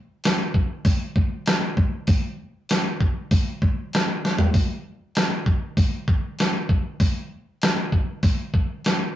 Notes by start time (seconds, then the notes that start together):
0.24 snare, open hi-hat
0.54 kick
0.85 kick, open hi-hat
1.16 kick
1.46 snare, open hi-hat
1.77 kick
2.07 kick, open hi-hat
2.69 snare, open hi-hat
3.01 kick
3.31 kick, open hi-hat
3.62 kick
3.93 snare, open hi-hat
4.25 snare
4.38 floor tom
4.54 kick, open hi-hat
5.15 snare, open hi-hat
5.46 kick
5.77 kick, open hi-hat
6.08 kick
6.39 snare, open hi-hat
6.69 kick
7.00 kick, open hi-hat
7.62 snare, open hi-hat
7.92 kick
8.23 kick, open hi-hat
8.54 kick
8.85 snare, open hi-hat